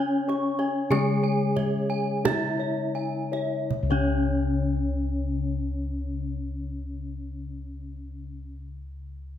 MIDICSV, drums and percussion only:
0, 0, Header, 1, 2, 480
1, 0, Start_track
1, 0, Tempo, 1237113
1, 353, Tempo, 1333333
1, 833, Tempo, 1463415
1, 1313, Time_signature, 4, 2, 24, 8
1, 1313, Tempo, 1538462
1, 3084, End_track
2, 0, Start_track
2, 0, Title_t, "Kendang"
2, 114, Note_on_c, 9, 62, 31
2, 153, Note_off_c, 9, 62, 0
2, 228, Note_on_c, 9, 62, 25
2, 267, Note_off_c, 9, 62, 0
2, 355, Note_on_c, 9, 63, 71
2, 391, Note_off_c, 9, 63, 0
2, 589, Note_on_c, 9, 62, 26
2, 589, Note_on_c, 9, 64, 65
2, 625, Note_off_c, 9, 62, 0
2, 625, Note_off_c, 9, 64, 0
2, 836, Note_on_c, 9, 62, 26
2, 836, Note_on_c, 9, 63, 75
2, 836, Note_on_c, 9, 64, 71
2, 869, Note_off_c, 9, 62, 0
2, 869, Note_off_c, 9, 63, 0
2, 869, Note_off_c, 9, 64, 0
2, 1190, Note_on_c, 9, 62, 30
2, 1223, Note_off_c, 9, 62, 0
2, 1313, Note_on_c, 9, 64, 78
2, 1344, Note_off_c, 9, 64, 0
2, 3084, End_track
0, 0, End_of_file